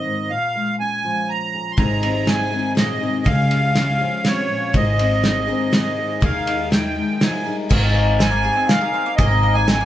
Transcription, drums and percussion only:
0, 0, Header, 1, 2, 480
1, 0, Start_track
1, 0, Key_signature, -4, "major"
1, 0, Tempo, 493827
1, 289, Time_signature, 3, 2, 24, 8
1, 9574, End_track
2, 0, Start_track
2, 0, Title_t, "Drums"
2, 1726, Note_on_c, 9, 51, 45
2, 1728, Note_on_c, 9, 36, 79
2, 1823, Note_off_c, 9, 51, 0
2, 1826, Note_off_c, 9, 36, 0
2, 1971, Note_on_c, 9, 51, 48
2, 2068, Note_off_c, 9, 51, 0
2, 2209, Note_on_c, 9, 38, 61
2, 2209, Note_on_c, 9, 51, 49
2, 2306, Note_off_c, 9, 38, 0
2, 2306, Note_off_c, 9, 51, 0
2, 2693, Note_on_c, 9, 38, 69
2, 2693, Note_on_c, 9, 51, 46
2, 2791, Note_off_c, 9, 38, 0
2, 2791, Note_off_c, 9, 51, 0
2, 3169, Note_on_c, 9, 51, 54
2, 3170, Note_on_c, 9, 36, 91
2, 3266, Note_off_c, 9, 51, 0
2, 3267, Note_off_c, 9, 36, 0
2, 3410, Note_on_c, 9, 51, 48
2, 3508, Note_off_c, 9, 51, 0
2, 3649, Note_on_c, 9, 38, 67
2, 3649, Note_on_c, 9, 51, 54
2, 3746, Note_off_c, 9, 38, 0
2, 3746, Note_off_c, 9, 51, 0
2, 4128, Note_on_c, 9, 38, 63
2, 4128, Note_on_c, 9, 51, 54
2, 4225, Note_off_c, 9, 38, 0
2, 4225, Note_off_c, 9, 51, 0
2, 4609, Note_on_c, 9, 36, 80
2, 4609, Note_on_c, 9, 51, 50
2, 4706, Note_off_c, 9, 36, 0
2, 4706, Note_off_c, 9, 51, 0
2, 4853, Note_on_c, 9, 51, 49
2, 4950, Note_off_c, 9, 51, 0
2, 5090, Note_on_c, 9, 38, 68
2, 5090, Note_on_c, 9, 51, 44
2, 5187, Note_off_c, 9, 38, 0
2, 5187, Note_off_c, 9, 51, 0
2, 5567, Note_on_c, 9, 38, 68
2, 5567, Note_on_c, 9, 51, 50
2, 5664, Note_off_c, 9, 38, 0
2, 5664, Note_off_c, 9, 51, 0
2, 6047, Note_on_c, 9, 51, 47
2, 6049, Note_on_c, 9, 36, 88
2, 6145, Note_off_c, 9, 51, 0
2, 6146, Note_off_c, 9, 36, 0
2, 6291, Note_on_c, 9, 51, 49
2, 6388, Note_off_c, 9, 51, 0
2, 6531, Note_on_c, 9, 38, 70
2, 6531, Note_on_c, 9, 51, 47
2, 6628, Note_off_c, 9, 38, 0
2, 6628, Note_off_c, 9, 51, 0
2, 7011, Note_on_c, 9, 38, 75
2, 7011, Note_on_c, 9, 51, 54
2, 7108, Note_off_c, 9, 38, 0
2, 7108, Note_off_c, 9, 51, 0
2, 7489, Note_on_c, 9, 49, 92
2, 7492, Note_on_c, 9, 36, 106
2, 7587, Note_off_c, 9, 49, 0
2, 7589, Note_off_c, 9, 36, 0
2, 7972, Note_on_c, 9, 38, 77
2, 7972, Note_on_c, 9, 42, 59
2, 8069, Note_off_c, 9, 38, 0
2, 8069, Note_off_c, 9, 42, 0
2, 8449, Note_on_c, 9, 38, 76
2, 8449, Note_on_c, 9, 42, 56
2, 8547, Note_off_c, 9, 38, 0
2, 8547, Note_off_c, 9, 42, 0
2, 8927, Note_on_c, 9, 42, 61
2, 8930, Note_on_c, 9, 36, 110
2, 9024, Note_off_c, 9, 42, 0
2, 9027, Note_off_c, 9, 36, 0
2, 9407, Note_on_c, 9, 38, 82
2, 9407, Note_on_c, 9, 42, 55
2, 9505, Note_off_c, 9, 38, 0
2, 9505, Note_off_c, 9, 42, 0
2, 9574, End_track
0, 0, End_of_file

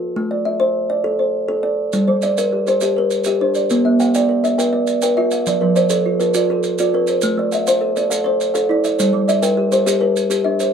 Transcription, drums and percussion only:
0, 0, Header, 1, 2, 480
1, 0, Start_track
1, 0, Tempo, 293542
1, 281, Time_signature, 12, 3, 24, 8
1, 17552, End_track
2, 0, Start_track
2, 0, Title_t, "Drums"
2, 3151, Note_on_c, 9, 70, 57
2, 3315, Note_off_c, 9, 70, 0
2, 3630, Note_on_c, 9, 70, 45
2, 3794, Note_off_c, 9, 70, 0
2, 3885, Note_on_c, 9, 70, 62
2, 4048, Note_off_c, 9, 70, 0
2, 4367, Note_on_c, 9, 70, 40
2, 4530, Note_off_c, 9, 70, 0
2, 4591, Note_on_c, 9, 70, 57
2, 4754, Note_off_c, 9, 70, 0
2, 5077, Note_on_c, 9, 70, 46
2, 5241, Note_off_c, 9, 70, 0
2, 5300, Note_on_c, 9, 70, 56
2, 5464, Note_off_c, 9, 70, 0
2, 5797, Note_on_c, 9, 70, 42
2, 5961, Note_off_c, 9, 70, 0
2, 6050, Note_on_c, 9, 70, 54
2, 6213, Note_off_c, 9, 70, 0
2, 6535, Note_on_c, 9, 70, 42
2, 6698, Note_off_c, 9, 70, 0
2, 6776, Note_on_c, 9, 70, 59
2, 6940, Note_off_c, 9, 70, 0
2, 7268, Note_on_c, 9, 70, 46
2, 7432, Note_off_c, 9, 70, 0
2, 7510, Note_on_c, 9, 70, 70
2, 7674, Note_off_c, 9, 70, 0
2, 7963, Note_on_c, 9, 70, 57
2, 8127, Note_off_c, 9, 70, 0
2, 8205, Note_on_c, 9, 70, 63
2, 8368, Note_off_c, 9, 70, 0
2, 8683, Note_on_c, 9, 70, 56
2, 8847, Note_off_c, 9, 70, 0
2, 8934, Note_on_c, 9, 70, 69
2, 9097, Note_off_c, 9, 70, 0
2, 9420, Note_on_c, 9, 70, 55
2, 9584, Note_off_c, 9, 70, 0
2, 9643, Note_on_c, 9, 70, 75
2, 9806, Note_off_c, 9, 70, 0
2, 10142, Note_on_c, 9, 70, 52
2, 10306, Note_off_c, 9, 70, 0
2, 10367, Note_on_c, 9, 70, 76
2, 10531, Note_off_c, 9, 70, 0
2, 10845, Note_on_c, 9, 70, 57
2, 11009, Note_off_c, 9, 70, 0
2, 11093, Note_on_c, 9, 70, 64
2, 11257, Note_off_c, 9, 70, 0
2, 11564, Note_on_c, 9, 70, 49
2, 11728, Note_off_c, 9, 70, 0
2, 11797, Note_on_c, 9, 70, 65
2, 11960, Note_off_c, 9, 70, 0
2, 12296, Note_on_c, 9, 70, 50
2, 12459, Note_off_c, 9, 70, 0
2, 12542, Note_on_c, 9, 70, 67
2, 12705, Note_off_c, 9, 70, 0
2, 13023, Note_on_c, 9, 70, 51
2, 13187, Note_off_c, 9, 70, 0
2, 13265, Note_on_c, 9, 70, 76
2, 13428, Note_off_c, 9, 70, 0
2, 13745, Note_on_c, 9, 70, 52
2, 13909, Note_off_c, 9, 70, 0
2, 13981, Note_on_c, 9, 70, 63
2, 14144, Note_off_c, 9, 70, 0
2, 14461, Note_on_c, 9, 70, 53
2, 14624, Note_off_c, 9, 70, 0
2, 14705, Note_on_c, 9, 70, 77
2, 14868, Note_off_c, 9, 70, 0
2, 15190, Note_on_c, 9, 70, 63
2, 15353, Note_off_c, 9, 70, 0
2, 15416, Note_on_c, 9, 70, 75
2, 15579, Note_off_c, 9, 70, 0
2, 15893, Note_on_c, 9, 70, 59
2, 16056, Note_off_c, 9, 70, 0
2, 16141, Note_on_c, 9, 70, 80
2, 16305, Note_off_c, 9, 70, 0
2, 16620, Note_on_c, 9, 70, 67
2, 16783, Note_off_c, 9, 70, 0
2, 16854, Note_on_c, 9, 70, 72
2, 17018, Note_off_c, 9, 70, 0
2, 17330, Note_on_c, 9, 70, 60
2, 17493, Note_off_c, 9, 70, 0
2, 17552, End_track
0, 0, End_of_file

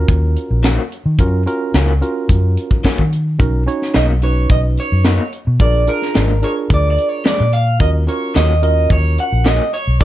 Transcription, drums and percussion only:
0, 0, Header, 1, 2, 480
1, 0, Start_track
1, 0, Key_signature, -6, "minor"
1, 0, Tempo, 550964
1, 1039, Time_signature, 4, 2, 24, 8
1, 8747, End_track
2, 0, Start_track
2, 0, Title_t, "Drums"
2, 72, Note_on_c, 9, 42, 70
2, 74, Note_on_c, 9, 36, 101
2, 160, Note_off_c, 9, 42, 0
2, 161, Note_off_c, 9, 36, 0
2, 315, Note_on_c, 9, 42, 60
2, 402, Note_off_c, 9, 42, 0
2, 557, Note_on_c, 9, 42, 82
2, 561, Note_on_c, 9, 38, 107
2, 644, Note_off_c, 9, 42, 0
2, 648, Note_off_c, 9, 38, 0
2, 800, Note_on_c, 9, 42, 55
2, 887, Note_off_c, 9, 42, 0
2, 1033, Note_on_c, 9, 42, 89
2, 1034, Note_on_c, 9, 36, 106
2, 1120, Note_off_c, 9, 42, 0
2, 1122, Note_off_c, 9, 36, 0
2, 1281, Note_on_c, 9, 42, 61
2, 1368, Note_off_c, 9, 42, 0
2, 1516, Note_on_c, 9, 42, 82
2, 1520, Note_on_c, 9, 38, 103
2, 1604, Note_off_c, 9, 42, 0
2, 1607, Note_off_c, 9, 38, 0
2, 1761, Note_on_c, 9, 42, 59
2, 1848, Note_off_c, 9, 42, 0
2, 1997, Note_on_c, 9, 42, 81
2, 1998, Note_on_c, 9, 36, 98
2, 2085, Note_off_c, 9, 36, 0
2, 2085, Note_off_c, 9, 42, 0
2, 2240, Note_on_c, 9, 42, 60
2, 2327, Note_off_c, 9, 42, 0
2, 2359, Note_on_c, 9, 36, 80
2, 2447, Note_off_c, 9, 36, 0
2, 2479, Note_on_c, 9, 36, 72
2, 2484, Note_on_c, 9, 42, 86
2, 2487, Note_on_c, 9, 38, 103
2, 2566, Note_off_c, 9, 36, 0
2, 2571, Note_off_c, 9, 42, 0
2, 2574, Note_off_c, 9, 38, 0
2, 2600, Note_on_c, 9, 36, 67
2, 2687, Note_off_c, 9, 36, 0
2, 2722, Note_on_c, 9, 42, 57
2, 2809, Note_off_c, 9, 42, 0
2, 2959, Note_on_c, 9, 36, 117
2, 2962, Note_on_c, 9, 42, 83
2, 3046, Note_off_c, 9, 36, 0
2, 3049, Note_off_c, 9, 42, 0
2, 3203, Note_on_c, 9, 42, 55
2, 3290, Note_off_c, 9, 42, 0
2, 3328, Note_on_c, 9, 38, 30
2, 3415, Note_off_c, 9, 38, 0
2, 3432, Note_on_c, 9, 42, 77
2, 3435, Note_on_c, 9, 38, 108
2, 3519, Note_off_c, 9, 42, 0
2, 3523, Note_off_c, 9, 38, 0
2, 3674, Note_on_c, 9, 42, 52
2, 3762, Note_off_c, 9, 42, 0
2, 3913, Note_on_c, 9, 42, 75
2, 3918, Note_on_c, 9, 36, 108
2, 4000, Note_off_c, 9, 42, 0
2, 4005, Note_off_c, 9, 36, 0
2, 4157, Note_on_c, 9, 42, 52
2, 4244, Note_off_c, 9, 42, 0
2, 4392, Note_on_c, 9, 42, 80
2, 4396, Note_on_c, 9, 38, 102
2, 4479, Note_off_c, 9, 42, 0
2, 4483, Note_off_c, 9, 38, 0
2, 4639, Note_on_c, 9, 42, 58
2, 4726, Note_off_c, 9, 42, 0
2, 4873, Note_on_c, 9, 42, 86
2, 4877, Note_on_c, 9, 36, 108
2, 4960, Note_off_c, 9, 42, 0
2, 4964, Note_off_c, 9, 36, 0
2, 5115, Note_on_c, 9, 42, 63
2, 5202, Note_off_c, 9, 42, 0
2, 5246, Note_on_c, 9, 38, 30
2, 5333, Note_off_c, 9, 38, 0
2, 5358, Note_on_c, 9, 42, 84
2, 5362, Note_on_c, 9, 38, 106
2, 5445, Note_off_c, 9, 42, 0
2, 5449, Note_off_c, 9, 38, 0
2, 5598, Note_on_c, 9, 42, 55
2, 5685, Note_off_c, 9, 42, 0
2, 5839, Note_on_c, 9, 36, 110
2, 5840, Note_on_c, 9, 42, 79
2, 5926, Note_off_c, 9, 36, 0
2, 5927, Note_off_c, 9, 42, 0
2, 6081, Note_on_c, 9, 42, 59
2, 6168, Note_off_c, 9, 42, 0
2, 6319, Note_on_c, 9, 42, 86
2, 6323, Note_on_c, 9, 38, 109
2, 6406, Note_off_c, 9, 42, 0
2, 6410, Note_off_c, 9, 38, 0
2, 6556, Note_on_c, 9, 42, 61
2, 6643, Note_off_c, 9, 42, 0
2, 6797, Note_on_c, 9, 36, 117
2, 6798, Note_on_c, 9, 42, 85
2, 6884, Note_off_c, 9, 36, 0
2, 6885, Note_off_c, 9, 42, 0
2, 7041, Note_on_c, 9, 42, 63
2, 7129, Note_off_c, 9, 42, 0
2, 7280, Note_on_c, 9, 42, 76
2, 7283, Note_on_c, 9, 38, 108
2, 7367, Note_off_c, 9, 42, 0
2, 7370, Note_off_c, 9, 38, 0
2, 7517, Note_on_c, 9, 42, 57
2, 7604, Note_off_c, 9, 42, 0
2, 7755, Note_on_c, 9, 36, 101
2, 7756, Note_on_c, 9, 42, 75
2, 7843, Note_off_c, 9, 36, 0
2, 7844, Note_off_c, 9, 42, 0
2, 7997, Note_on_c, 9, 42, 58
2, 8084, Note_off_c, 9, 42, 0
2, 8236, Note_on_c, 9, 42, 77
2, 8240, Note_on_c, 9, 38, 104
2, 8323, Note_off_c, 9, 42, 0
2, 8327, Note_off_c, 9, 38, 0
2, 8482, Note_on_c, 9, 42, 57
2, 8569, Note_off_c, 9, 42, 0
2, 8716, Note_on_c, 9, 42, 83
2, 8718, Note_on_c, 9, 36, 109
2, 8747, Note_off_c, 9, 36, 0
2, 8747, Note_off_c, 9, 42, 0
2, 8747, End_track
0, 0, End_of_file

